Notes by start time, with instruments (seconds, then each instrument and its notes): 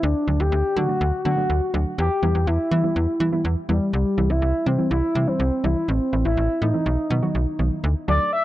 0.03 fm bass D2, analog synth lead D4
0.27 fm bass D2, synth pluck D3 F#3 A3 D4
0.40 fm bass D2, analog synth lead G4
0.52 fm bass D2
0.76 synth pluck D3 F#3 A3 D4, fm bass D3, analog synth lead F#4
0.89 synth pluck D3 F#3 A3 D4
1.01 fm bass D2
1.25 synth pluck D3 F#3 A3 B3, fm bass D3, analog synth lead F#4
1.37 synth pluck D3 F#3 A3 D4
1.50 fm bass D2
1.74 fm bass D2, synth pluck D3 F#3 A3 D4
1.98 fm bass E2, analog synth lead G4
2.23 fm bass E2, synth pluck E3 G3 B3 E4
2.35 fm bass E2
2.47 fm bass E2, analog synth lead E4
2.71 fm bass E3, synth pluck E3 G3 B3 E4
2.84 synth pluck E3 G3 B3 E4
2.96 fm bass E2
3.20 fm bass E3, synth pluck E3 G3 B3 E4
3.32 synth pluck E3 G3 B3 E4
3.45 fm bass E2
3.69 fm bass E2, synth pluck E3 G3 B3 E4, analog synth lead G3
3.93 fm bass C2, analog synth lead G3
4.18 fm bass C2, synth pluck E3 G3 C4 E4
4.30 fm bass C2, analog synth lead E4
4.42 fm bass C2
4.66 fm bass C3, synth pluck E3 G3 C4 E4, analog synth lead C4
4.79 synth pluck E3 G3 C4 E4
4.91 fm bass C2, analog synth lead E4
5.15 fm bass C3, synth pluck E3 G3 C4 E4
5.27 synth pluck E3 G3 C4 E4, analog synth lead C4
5.40 fm bass C2
5.64 fm bass C2, synth pluck E3 G3 C4 E4, analog synth lead E4
5.88 fm bass A1, analog synth lead C4
6.13 fm bass A1, synth pluck E3 A3 C4 E4
6.25 fm bass A1, analog synth lead E4
6.37 fm bass A1
6.62 fm bass A2, synth pluck E3 A3 C4 E4, analog synth lead D#4
6.74 synth pluck E3 A3 C4 E4
6.86 fm bass B1
7.10 fm bass B2, synth pluck D#3 F#3 B3 D#4
7.22 synth pluck D#3 F#3 B3 F#4
7.35 fm bass B1
7.59 fm bass B1, synth pluck D#3 F#3 B3 D#4
7.84 fm bass D2
8.08 fm bass D2, synth pluck F#3 A3 D4 F#4 A4, analog synth lead D5
8.33 analog synth lead E5